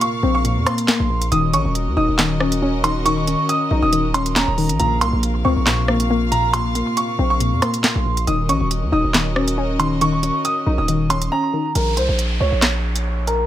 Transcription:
Already playing: synth pluck A#2 A#3, string section C3 F4 A#4 F5
0.01 grand piano C#6, closed hi-hat
0.23 808-style bass A#1, synth pluck C4
0.35 grand piano C#6
0.45 synth pluck A#2, closed hi-hat
0.56 808-style bass F2
0.66 synth pluck A#3, grand piano C6, cross-stick, closed hi-hat
0.78 closed hi-hat
0.88 synth pluck A#3, snare, clap, closed hi-hat
1.00 808-style bass A#1
1.10 synth pluck A#2
1.22 closed hi-hat
1.32 808-style bass D#1, synth pluck D#3, string section C#4 F#4 D#5, grand piano D#6, closed hi-hat
1.53 808-style bass A#1, synth pluck C#4, grand piano C#6, closed hi-hat
1.65 808-style bass D#1
1.75 closed hi-hat
1.87 808-style bass D#2
1.97 808-style bass D#1, synth pluck D#4, grand piano D#6
2.08 808-style bass D#1
2.19 synth pluck D#3, snare, clap, closed hi-hat
2.40 synth pluck C#4, cross-stick
2.52 closed hi-hat
2.62 synth pluck C#4
2.84 synth pluck D#3, grand piano C6, closed hi-hat
3.06 synth pluck D#3, grand piano C#6, closed hi-hat
3.27 synth pluck C#4, closed hi-hat
3.49 grand piano D#6, closed hi-hat
3.71 808-style bass A#1, synth pluck D#4
3.82 808-style bass D#1, grand piano D#6
3.93 synth pluck D#3, closed hi-hat
4.14 synth pluck C#4, grand piano C6, closed hi-hat
4.26 closed hi-hat
4.36 synth pluck C#4, grand piano A#5, snare, clap, closed hi-hat
4.48 808-style bass D#1
4.58 synth pluck D#3, open hi-hat
4.69 808-style bass A#1, closed hi-hat
4.79 808-style bass A#1, synth pluck A#2, string section C3 F4 F5, grand piano A#5, closed hi-hat
5.01 808-style bass C2, synth pluck A#3, grand piano C6, closed hi-hat
5.13 808-style bass A#1
5.23 closed hi-hat
5.45 808-style bass C#2, synth pluck C4, grand piano C#6
5.56 808-style bass A#1
5.66 synth pluck A#2, snare, clap, closed hi-hat
5.88 synth pluck A#3, cross-stick
6.00 closed hi-hat
6.10 synth pluck A#3
6.32 synth pluck A#2, grand piano A#5, closed hi-hat
6.53 synth pluck A#2, grand piano C6, closed hi-hat
6.75 synth pluck A#3, closed hi-hat
6.97 grand piano C#6, closed hi-hat
7.19 808-style bass A#1, synth pluck C4
7.30 grand piano C#6
7.40 synth pluck A#2, closed hi-hat
7.52 808-style bass F2
7.62 synth pluck A#3, grand piano C6, cross-stick, closed hi-hat
7.74 closed hi-hat
7.84 synth pluck A#3, snare, clap, closed hi-hat
7.95 808-style bass A#1
8.06 synth pluck A#2
8.17 closed hi-hat
8.27 808-style bass D#1, synth pluck D#3, string section C#4 F#4 A#4 D#5, grand piano D#6, closed hi-hat
8.49 808-style bass A#1, synth pluck C#4, grand piano C#6, closed hi-hat
8.61 808-style bass D#1
8.71 closed hi-hat
8.82 808-style bass D#2
8.92 808-style bass D#1, synth pluck D#4, grand piano D#6
9.04 808-style bass D#1
9.14 synth pluck D#3, snare, clap, closed hi-hat
9.36 synth pluck C#4, cross-stick
9.48 closed hi-hat
9.58 synth pluck C#4
9.79 synth pluck D#3, grand piano C6, closed hi-hat
10.01 synth pluck D#3, grand piano C#6, closed hi-hat
10.23 synth pluck C#4, closed hi-hat
10.45 grand piano D#6, closed hi-hat
10.66 808-style bass A#1, synth pluck D#4
10.78 808-style bass D#1, grand piano D#6
10.88 synth pluck D#3, closed hi-hat
11.10 synth pluck C#4, grand piano C6, closed hi-hat
11.22 closed hi-hat
11.32 synth pluck C#4, grand piano A#5
11.53 synth pluck D#3
11.75 808-style bass A#1, grand piano A#4, closed hi-hat, downlifter
11.97 808-style bass C2, grand piano C5, closed hi-hat
12.09 808-style bass A#1
12.19 closed hi-hat
12.40 808-style bass C#2, grand piano C#5
12.52 808-style bass A#1
12.62 snare, clap, closed hi-hat
12.96 closed hi-hat
13.27 grand piano A#4, closed hi-hat

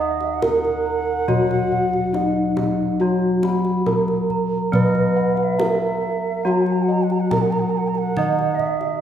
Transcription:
Already playing: kettle gongs D#2 D#5, bronze metallophone D#4 D#5
0.00 bansuri E5, kettle gongs F#5, bronze metallophone D#6
0.11 bansuri D#5
0.21 bansuri E5, kendang slap
0.34 bansuri F#5
0.42 kettle gongs E4 A#5, bronze metallophone A#4 A#5, kendang high, kendang low
0.65 kendang slap
0.86 bronze metallophone A#5
1.28 bronze metallophone F#3 F#4 F#5, kettle gongs F#3 D#5, kendang low
1.51 kendang slap
1.72 kettle gongs F#5, bronze metallophone F#5, kendang low
1.93 kendang slap
2.13 bronze metallophone D#4 D#5, kettle gongs E4 D#5, kendang high
2.57 bronze metallophone D#5, kendang high, kendang low
3.00 bronze metallophone F#3 F#4 F#5, kettle gongs F#4 A#5
3.43 bronze metallophone F#5, kettle gongs B5, kendang high
3.65 kendang slap
3.86 kettle gongs E4 A#5, bronze metallophone A#4 A#5, kendang high, kendang low
4.08 kendang slap
4.30 bronze metallophone A#5, kendang low
4.72 kettle gongs F#3 A#5, bronze metallophone B3 B4 B5, bansuri D#5, kendang low
4.95 kendang slap
5.16 kettle gongs F#5, bronze metallophone B5
5.36 bansuri F#5, kendang slap
5.44 bansuri E5
5.59 kettle gongs E4 A#5, bronze metallophone A#4 A#5, kendang high
6.02 bronze metallophone A#5
6.44 bronze metallophone F#3 F#4 F#5, kettle gongs F#4 A#5, bansuri F#5
6.52 bansuri A#5
6.62 bansuri F#5
6.66 kendang slap
6.72 bansuri A#5
6.83 bansuri F#5
6.88 kettle gongs D#5, bronze metallophone F#5
6.92 bansuri A#5
7.03 bansuri F#5
7.10 bansuri A#5, kendang slap
7.20 bansuri F#5
7.30 kettle gongs E4 A#5, bronze metallophone A#4 A#5, bansuri A#5, kendang high, kendang low
7.41 bansuri F#5
7.51 bansuri A#5, kendang slap
7.60 bansuri F#5
7.70 bansuri A#5, bronze metallophone A#5
7.78 bansuri F#5
7.88 bansuri A#5
7.95 bansuri F#5, kendang slap
8.17 kettle gongs D#3 F#5, bronze metallophone D#4 D#5 D#6, kendang low
8.39 kendang slap
8.55 bansuri E5
8.59 kettle gongs D#5, bronze metallophone D#6, kendang low
8.81 kendang slap

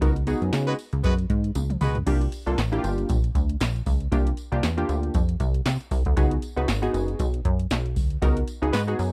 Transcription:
0.01 analog synth bass C#2, analog polysynth B3 D#4 F#4 A#4, kick, closed hi-hat, tambourine
0.16 closed hi-hat
0.27 analog polysynth B3 D#4 F#4 G#4, closed hi-hat, tambourine
0.42 analog synth bass F#2, closed hi-hat
0.53 analog synth bass C#3, snare, clap, closed hi-hat, tambourine
0.67 horn section G#3 B3 F#4 B4, closed hi-hat
0.79 open hi-hat, tambourine
0.93 analog synth bass C#2, closed hi-hat
1.04 analog synth bass F#2, horn section G#3 B3 F#4 B4, kick, closed hi-hat, tambourine
1.19 closed hi-hat
1.30 analog synth bass G#2, kick, closed hi-hat
1.44 closed hi-hat
1.55 analog synth bass C#2, closed hi-hat, high tom, tambourine
1.70 closed hi-hat, mid tom
1.81 analog synth bass C#2, horn section G#3 B3 F#4 B4, mid tom, open hi-hat, tambourine
1.95 closed hi-hat, floor tom
2.06 analog synth bass C2, analog polysynth A#3 D4 F4 G4, kick, closed hi-hat, crash
2.21 closed hi-hat
2.32 closed hi-hat, tambourine
2.46 analog synth bass C2, analog polysynth A#3 D4 F4 A4, closed hi-hat
2.58 analog synth bass A1, snare, clap, closed hi-hat, tambourine
2.72 analog polysynth A#3 D4 E4 G4, closed hi-hat
2.79 analog polysynth F4
2.84 analog synth bass G1, closed hi-hat, tambourine
2.98 closed hi-hat
3.09 analog synth bass A#1, kick, closed hi-hat, tambourine
3.24 closed hi-hat
3.35 analog synth bass D2, kick, closed hi-hat, tambourine
3.49 closed hi-hat
3.60 analog synth bass A#1, snare, clap, closed hi-hat, tambourine
3.76 closed hi-hat
3.86 analog synth bass C#2, kick, open hi-hat, tambourine
4.00 closed hi-hat
4.12 analog synth bass C2, analog polysynth A#3 D4 F4 G4, kick, closed hi-hat, tambourine
4.27 closed hi-hat
4.37 closed hi-hat, tambourine
4.52 analog synth bass C2, analog polysynth A#3 D4 F4 G4, closed hi-hat
4.63 analog synth bass E2, snare, clap, closed hi-hat, tambourine
4.77 analog polysynth A#3 D4 F4 G4, closed hi-hat
4.89 analog synth bass D2, closed hi-hat, tambourine
5.03 closed hi-hat
5.14 analog synth bass F2, kick, closed hi-hat, tambourine
5.29 closed hi-hat
5.40 analog synth bass C2, kick, closed hi-hat, tambourine
5.54 closed hi-hat
5.66 analog synth bass C3, snare, clap, closed hi-hat, tambourine
5.81 closed hi-hat
5.91 analog synth bass C2, kick, open hi-hat, tambourine
6.05 analog synth bass D2, kick, closed hi-hat
6.17 analog synth bass C#2, analog polysynth B3 D#4 F#4 G#4, kick, closed hi-hat, tambourine
6.31 closed hi-hat
6.42 closed hi-hat, tambourine
6.56 analog synth bass C#2, analog polysynth B3 D#4 F#4 B4, closed hi-hat
6.68 analog synth bass G#1, snare, clap, closed hi-hat, tambourine
6.82 analog polysynth B3 D#4 F#4 G#4, closed hi-hat
6.94 analog synth bass F#1, closed hi-hat, tambourine
7.08 closed hi-hat
7.19 analog synth bass B1, kick, closed hi-hat, tambourine
7.34 closed hi-hat
7.45 analog synth bass F#2, kick, closed hi-hat
7.59 closed hi-hat
7.71 analog synth bass B1, snare, clap, closed hi-hat, tambourine
7.86 closed hi-hat
7.96 analog synth bass D2, kick, open hi-hat, tambourine
8.10 closed hi-hat
8.22 analog synth bass C#2, analog polysynth B3 D#4 F#4 A#4, kick, closed hi-hat, tambourine
8.37 closed hi-hat
8.48 closed hi-hat, tambourine
8.62 analog synth bass C#2, analog polysynth B3 D#4 F#4 G#4, closed hi-hat
8.73 analog synth bass G#2, horn section G#3 B3 F#4 B4, snare, clap, closed hi-hat, tambourine
8.87 analog polysynth B3 D#4 F#4 G#4, closed hi-hat
8.99 analog synth bass F#2, open hi-hat, tambourine

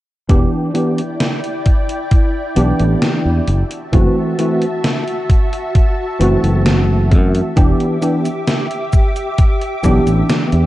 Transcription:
0.29 fingered electric bass E1, tine electric piano E3 B3 D4 G4, string machine E4 D5 G5, kick, closed hi-hat
0.74 tine electric piano E3 B3 D4 G4, closed hi-hat
0.98 closed hi-hat
1.20 snare, closed hi-hat
1.44 closed hi-hat
1.66 kick, closed hi-hat
1.89 closed hi-hat
2.11 kick, closed hi-hat
2.56 fingered electric bass B1, tine electric piano E3 B3 D4 G4, closed hi-hat
2.79 fingered electric bass A1, closed hi-hat
3.02 snare, closed hi-hat
3.25 fingered electric bass E2
3.48 fingered electric bass F#1, string machine F#4 E5 A5, closed hi-hat
3.71 closed hi-hat
3.92 fingered electric bass F#1, tine electric piano E3 A3 C4 F#4, kick, closed hi-hat
4.38 tine electric piano E3 A3 C4 F#4, closed hi-hat
4.62 closed hi-hat
4.84 snare, closed hi-hat
5.08 closed hi-hat
5.30 kick, closed hi-hat
5.53 closed hi-hat
5.75 kick, closed hi-hat
6.19 fingered electric bass F#1, tine electric piano E3 A3 C4 F#4, closed hi-hat
6.43 fingered electric bass F#1, closed hi-hat
6.66 snare, closed hi-hat
7.11 fingered electric bass F#2, kick, closed hi-hat
7.35 closed hi-hat
7.56 fingered electric bass E1, tine electric piano E3 B3 D4 G4, string machine G4 E5 D6, kick, closed hi-hat, cabasa
7.80 closed hi-hat
8.01 tine electric piano E3 B3 D4 G4, closed hi-hat, cabasa
8.25 closed hi-hat, cabasa
8.47 snare, closed hi-hat, cabasa
8.71 closed hi-hat
8.93 kick, closed hi-hat, cabasa
9.16 closed hi-hat, cabasa
9.38 kick, closed hi-hat, cabasa
9.62 closed hi-hat
9.83 fingered electric bass B1, tine electric piano E3 B3 D4 G4, kick, closed hi-hat, cabasa
10.07 fingered electric bass A1, closed hi-hat, cabasa
10.30 snare, closed hi-hat, cabasa
10.52 fingered electric bass E2, closed hi-hat

